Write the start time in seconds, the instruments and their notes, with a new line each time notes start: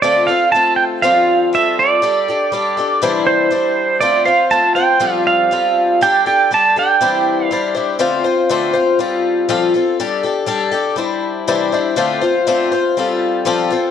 0.02 twelve-string acoustic guitar D3 A3 C4 F4 A4, pedal steel guitar D5
0.27 twelve-string acoustic guitar C4 F4 A4, pedal steel guitar F5
0.52 twelve-string acoustic guitar A3 C4 F4 A4, pedal steel guitar A5
0.76 pedal steel guitar G5
1.02 twelve-string acoustic guitar F3 G3 C4 F4 A4, pedal steel guitar F5
1.53 twelve-string acoustic guitar G3 C4 F4 A4, pedal steel guitar E5
1.79 pedal steel guitar D5
2.02 twelve-string acoustic guitar G3 D4 G4 A4
2.28 twelve-string acoustic guitar D4 G4 A4
2.52 twelve-string acoustic guitar G3 D4 G4 A4
2.77 twelve-string acoustic guitar D4 G4 A4
3.02 twelve-string acoustic guitar C3 E3 G3 D4 E4 C5
3.27 pedal steel guitar C5
3.51 twelve-string acoustic guitar G3 D4 E4 C5
4.01 twelve-string acoustic guitar D3 A3 C4 F4 C5, pedal steel guitar D5
4.25 twelve-string acoustic guitar C4 F4 C5, pedal steel guitar F5
4.51 twelve-string acoustic guitar A3 C4 F4 C5, pedal steel guitar A5
4.75 twelve-string acoustic guitar C4 F4 C5, pedal steel guitar G5
5.00 twelve-string acoustic guitar F3 G3 C4 F4 A4
5.27 pedal steel guitar F5
5.51 twelve-string acoustic guitar G3 C4 F4 A4
6.01 twelve-string acoustic guitar G3 D4 G4 A4, pedal steel guitar G5
6.26 twelve-string acoustic guitar D4 G4 A4, pedal steel guitar G5
6.51 twelve-string acoustic guitar G3 D4 G4 A4, pedal steel guitar A5
6.76 twelve-string acoustic guitar D4 G4 A4, pedal steel guitar G5
7.01 twelve-string acoustic guitar C3 E3 G3 D4 E4 C5
7.45 pedal steel guitar F5
7.51 twelve-string acoustic guitar G3 D4 E4 C5
7.75 twelve-string acoustic guitar G3 D4 E4 C5
7.99 twelve-string acoustic guitar D3 A3 C4 F4 C5
8.24 twelve-string acoustic guitar C4 F4 C5
8.49 twelve-string acoustic guitar D3 A3 C4 F4 C5
8.73 twelve-string acoustic guitar C4 F4 C5
8.99 twelve-string acoustic guitar G3 C4 F4 A4
9.49 twelve-string acoustic guitar F3 G3 C4 F4 A4
9.74 twelve-string acoustic guitar C4 F4 A4
10.00 twelve-string acoustic guitar G3 D4 G4 A4
10.23 twelve-string acoustic guitar D4 G4 A4
10.46 twelve-string acoustic guitar G3 D4 G4 A4
10.71 twelve-string acoustic guitar D4 G4 A4
10.96 twelve-string acoustic guitar G3 D4 E4 C5
11.48 twelve-string acoustic guitar C3 E3 G3 D4 E4 C5
11.72 twelve-string acoustic guitar G3 D4 E4 C5
11.96 twelve-string acoustic guitar D3 A3 C4 F4 C5
12.21 twelve-string acoustic guitar C4 F4 C5
12.47 twelve-string acoustic guitar D3 A3 C4 F4 C5
12.72 twelve-string acoustic guitar C4 F4 C5
12.97 twelve-string acoustic guitar G3 C4 F4 A4
13.45 twelve-string acoustic guitar F3 G3 C4 F4 A4
13.70 twelve-string acoustic guitar C4 F4 A4